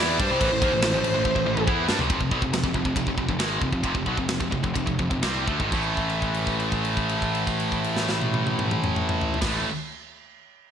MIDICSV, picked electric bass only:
0, 0, Header, 1, 2, 480
1, 0, Start_track
1, 0, Key_signature, 0, "minor"
1, 0, Tempo, 424028
1, 464, Time_signature, 4, 2, 24, 8
1, 3346, Tempo, 448430
1, 5266, Tempo, 485044
1, 6226, Tempo, 500835
1, 11009, End_track
2, 0, Start_track
2, 0, Title_t, "Picked electric bass"
2, 0, Program_c, 0, 34
2, 0, Note_on_c, 0, 40, 99
2, 208, Note_off_c, 0, 40, 0
2, 216, Note_on_c, 0, 43, 106
2, 332, Note_off_c, 0, 43, 0
2, 349, Note_on_c, 0, 36, 96
2, 454, Note_off_c, 0, 36, 0
2, 461, Note_on_c, 0, 33, 102
2, 574, Note_off_c, 0, 33, 0
2, 584, Note_on_c, 0, 33, 93
2, 691, Note_off_c, 0, 33, 0
2, 698, Note_on_c, 0, 39, 86
2, 809, Note_off_c, 0, 39, 0
2, 816, Note_on_c, 0, 33, 74
2, 931, Note_off_c, 0, 33, 0
2, 939, Note_on_c, 0, 33, 85
2, 1052, Note_off_c, 0, 33, 0
2, 1064, Note_on_c, 0, 33, 86
2, 1170, Note_off_c, 0, 33, 0
2, 1176, Note_on_c, 0, 33, 94
2, 1291, Note_off_c, 0, 33, 0
2, 1302, Note_on_c, 0, 33, 93
2, 1405, Note_off_c, 0, 33, 0
2, 1411, Note_on_c, 0, 33, 93
2, 1528, Note_off_c, 0, 33, 0
2, 1535, Note_on_c, 0, 33, 83
2, 1649, Note_off_c, 0, 33, 0
2, 1657, Note_on_c, 0, 33, 85
2, 1770, Note_off_c, 0, 33, 0
2, 1777, Note_on_c, 0, 33, 86
2, 1888, Note_off_c, 0, 33, 0
2, 1895, Note_on_c, 0, 40, 97
2, 2120, Note_off_c, 0, 40, 0
2, 2146, Note_on_c, 0, 43, 102
2, 2255, Note_off_c, 0, 43, 0
2, 2266, Note_on_c, 0, 36, 98
2, 2369, Note_off_c, 0, 36, 0
2, 2375, Note_on_c, 0, 29, 97
2, 2489, Note_off_c, 0, 29, 0
2, 2495, Note_on_c, 0, 29, 73
2, 2609, Note_off_c, 0, 29, 0
2, 2619, Note_on_c, 0, 35, 87
2, 2732, Note_off_c, 0, 35, 0
2, 2738, Note_on_c, 0, 29, 72
2, 2851, Note_off_c, 0, 29, 0
2, 2874, Note_on_c, 0, 29, 80
2, 2974, Note_off_c, 0, 29, 0
2, 2981, Note_on_c, 0, 29, 81
2, 3094, Note_off_c, 0, 29, 0
2, 3105, Note_on_c, 0, 29, 90
2, 3217, Note_off_c, 0, 29, 0
2, 3225, Note_on_c, 0, 29, 86
2, 3338, Note_off_c, 0, 29, 0
2, 3346, Note_on_c, 0, 29, 83
2, 3454, Note_off_c, 0, 29, 0
2, 3466, Note_on_c, 0, 29, 72
2, 3572, Note_off_c, 0, 29, 0
2, 3580, Note_on_c, 0, 29, 79
2, 3688, Note_off_c, 0, 29, 0
2, 3698, Note_on_c, 0, 29, 81
2, 3806, Note_off_c, 0, 29, 0
2, 3813, Note_on_c, 0, 32, 93
2, 4032, Note_off_c, 0, 32, 0
2, 4047, Note_on_c, 0, 29, 87
2, 4158, Note_off_c, 0, 29, 0
2, 4166, Note_on_c, 0, 29, 72
2, 4278, Note_off_c, 0, 29, 0
2, 4289, Note_on_c, 0, 29, 95
2, 4399, Note_off_c, 0, 29, 0
2, 4406, Note_on_c, 0, 29, 80
2, 4518, Note_off_c, 0, 29, 0
2, 4531, Note_on_c, 0, 35, 85
2, 4642, Note_off_c, 0, 35, 0
2, 4649, Note_on_c, 0, 29, 64
2, 4762, Note_off_c, 0, 29, 0
2, 4786, Note_on_c, 0, 29, 85
2, 4888, Note_off_c, 0, 29, 0
2, 4895, Note_on_c, 0, 29, 78
2, 5009, Note_off_c, 0, 29, 0
2, 5024, Note_on_c, 0, 29, 82
2, 5137, Note_off_c, 0, 29, 0
2, 5144, Note_on_c, 0, 29, 85
2, 5260, Note_off_c, 0, 29, 0
2, 5271, Note_on_c, 0, 29, 80
2, 5378, Note_off_c, 0, 29, 0
2, 5384, Note_on_c, 0, 29, 78
2, 5493, Note_off_c, 0, 29, 0
2, 5504, Note_on_c, 0, 29, 75
2, 5613, Note_off_c, 0, 29, 0
2, 5620, Note_on_c, 0, 29, 81
2, 5731, Note_off_c, 0, 29, 0
2, 5745, Note_on_c, 0, 36, 91
2, 5967, Note_off_c, 0, 36, 0
2, 5983, Note_on_c, 0, 38, 91
2, 6096, Note_off_c, 0, 38, 0
2, 6106, Note_on_c, 0, 32, 93
2, 6219, Note_off_c, 0, 32, 0
2, 6225, Note_on_c, 0, 33, 95
2, 9681, Note_off_c, 0, 33, 0
2, 9773, Note_on_c, 0, 33, 93
2, 9976, Note_off_c, 0, 33, 0
2, 11009, End_track
0, 0, End_of_file